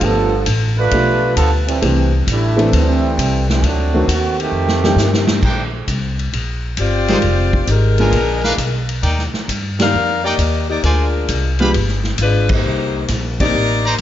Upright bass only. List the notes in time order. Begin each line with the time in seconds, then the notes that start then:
0.01 G1
0.46 A1
0.91 B1
1.36 D2
1.82 C2
2.27 A1
2.73 D2
3.18 C2
3.62 D2
4.08 D#2
4.52 F2
4.96 G2
5.43 A#1
5.88 C2
6.33 A#1
6.77 G1
7.22 F1
7.67 G#1
8.12 A#1
8.58 B1
9.03 D#2
9.34 muted upright bass stroke
9.48 G2
9.94 F2
10.38 D#2
10.83 D2
11.29 C2
11.74 G1
12.19 G#1
12.64 C2
13.09 A#1
13.54 A1